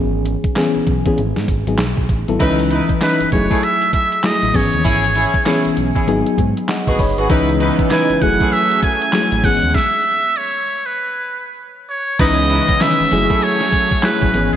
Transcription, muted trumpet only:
3.02 B4
3.32 C#5
3.63 E5
3.94 E5
4.25 D#5
4.56 C#5
7.91 G#5
8.22 F#5
8.53 E5
8.83 G#5
9.45 F#5
9.75 E5
10.37 C#5
10.86 B4
11.90 C#5
12.20 D#5
12.82 E5
13.43 C#5
14.04 B4
14.53 G#4

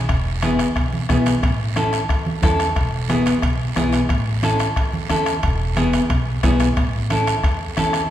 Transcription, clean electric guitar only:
0.43 B3 E4 G#4
1.09 B3 E4 G#4
1.76 C#4 E4 A4
2.43 C#4 E4 A4
3.09 B3 E4 G#4
3.76 B3 E4 G#4
4.43 C#4 E4 A4
5.10 C#4 E4 A4
5.76 B3 E4 G#4
6.43 B3 E4 G#4
7.11 C#4 E4 A4
7.77 C#4 E4 A4

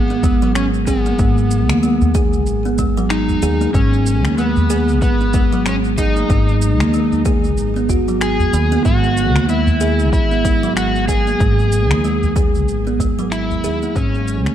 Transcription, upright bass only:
Already playing: G#1
1.19 G#1
1.70 D#2
2.47 G#1
3.43 D#2
3.74 G#1
4.25 D#2
5.02 G#1
6.30 G#1
6.80 D#2
7.57 G#1
8.53 D#2
8.85 G#1
9.36 D#2
10.13 G#1
11.40 G#1
11.91 D#2
12.68 G#1
13.64 D#2
13.96 G#1
14.46 D#2

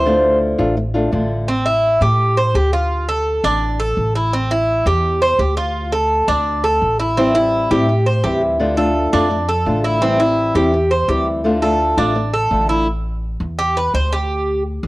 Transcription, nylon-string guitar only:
0.05 D3 A3 D4 F4
0.58 A3 D4 F4
0.77 muted nylon-string guitar stroke
0.94 A3 D4 F4
1.12 D3 A3 D4 F4
7.17 E3 G3 C4 E4
7.35 G3 C4 E4
7.71 G3 C4 E4
7.89 muted nylon-string guitar stroke
8.24 E3 G3 C4 E4
8.60 D3 A3 D4 F4
8.77 A3 D4 F4
9.13 A3 D4 F4
9.30 muted nylon-string guitar stroke
9.65 D3 A3 D4 F4
10.01 E3 G3 C4 E4
10.20 G3 C4 E4
10.55 G3 C4 E4
10.73 muted nylon-string guitar stroke
11.08 E3 G3 C4 E4
11.44 D3 A3 D4 F4
11.62 A3 D4 F4
11.98 A3 D4 F4
12.15 muted nylon-string guitar stroke
12.50 D3 A3 D4 F4

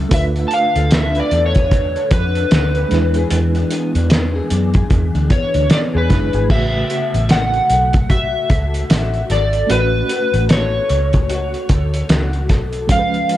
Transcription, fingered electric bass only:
0.11 D2
0.76 D2
1.32 E2
2.11 F2
2.52 D2
2.92 E2
3.31 E2
3.95 E2
4.51 F#2
4.91 E2
5.15 D2
5.55 D2
5.95 E2
6.10 F#1
6.34 G#1
6.50 A1
7.14 A1
7.70 B1
8.50 C#2
8.90 A1
9.30 G#1
9.70 A1
10.34 A1
10.90 C#2
11.70 D2
12.10 C#2
12.50 B1
12.89 C#2

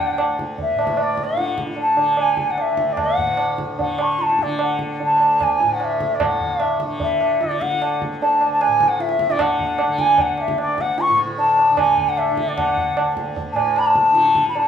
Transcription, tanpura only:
Already playing: D2 A2 D3
0.12 D2
0.73 A2
1.33 D3
1.95 D3
2.57 D2
3.17 A2
3.78 D3
4.40 D3
5.02 D2
5.63 A2
6.21 A2
6.83 D3
7.43 D3
8.04 D2
8.66 A2
9.26 D3
9.87 D3
10.47 D2
11.09 A2
11.70 D3
12.31 D3
12.90 D2
13.52 A2
14.11 D3

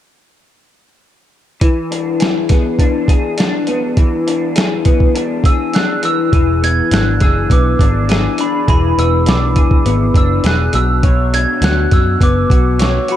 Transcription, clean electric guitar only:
1.61 E3
1.91 D4
2.20 G#4
2.49 B3
2.79 D4
3.09 G#4
3.38 D4
3.68 B3
3.97 E3
4.27 D4
4.56 G#4
4.86 B3
5.15 D4
5.45 G#4
5.73 D4
6.03 E3
6.32 E3 G#4
6.62 B3
6.92 D4
7.21 G#4
7.50 B3
7.80 D4
8.09 G#4
8.39 D4
8.68 E3 G#4
8.98 B3
9.27 D4
9.56 G#4
9.86 B3
10.15 D4
10.45 G#4
10.74 B2
11.03 B2 C#5
11.33 D4
11.62 F#4
12.21 B3
12.50 F#4
12.79 C#5
13.09 F#4

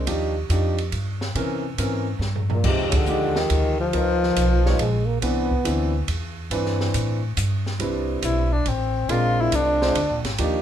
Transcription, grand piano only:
0.07 F3 D4 D#4 G4
0.50 F3 D4 D#4 G4
1.36 E3 C4 C#4 A#4
1.79 E3 C4 C#4 A#4
2.64 F3 G#3 D#4 G4
3.07 F3 G#3 D#4 G4
3.93 F3 B3 D#4 A#4
4.66 F3 B3 D#4 C#5
5.22 E3 C4 D4 B4
5.64 E3 C4 D4 E4
6.51 E3 C4 D4 B4
7.80 G3 C4 D4 E4 B4
9.09 G#3 C4 D4 F4 A#4
9.81 G#3 C4 D4 F4 C5
10.38 F3 A#3 D4 D#4 G4

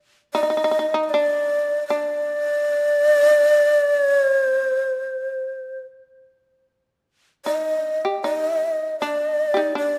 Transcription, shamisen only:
0.35 D#4
0.43 D#4
0.50 D#4
0.57 D#4
0.64 D#4
0.71 D#4
0.79 D#4
0.94 D#4
1.14 D4
1.90 D4
7.46 D#4
7.78 D4
8.05 G4
8.24 D#4
9.02 D4
9.54 D#4 G4
9.75 D4

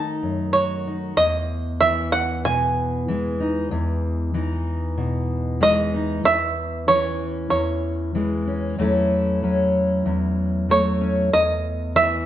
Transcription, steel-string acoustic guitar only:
Already playing: D#3 A3 D#4 F#4
0.23 F#2
0.55 F#4
0.87 D#4
1.17 E2
1.81 E3
2.45 B2
3.08 E3 G#3
3.40 D#4
3.71 E2
4.34 E3 D#4
4.97 B2
5.61 E3 G#3
5.94 D#4
6.24 E2
6.89 E3 C#4
7.51 E2
8.15 E3 G#3
8.47 C#4
8.78 E2 F#3 A3 C#4 E4
9.43 F#3 C#4
10.06 E2
10.69 F#3 A3
11.01 C#4
11.33 E2
11.96 E3

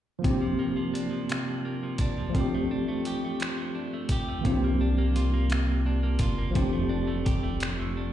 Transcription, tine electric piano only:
0.19 F3 A#3
0.24 C4 D4
0.30 G4
2.30 F3 A3
2.35 C4 D4
2.40 G4
4.41 E3 A#3
4.46 F3 C4 D4
4.52 G4
6.51 F3 A3
6.57 C4 D4
6.62 G4

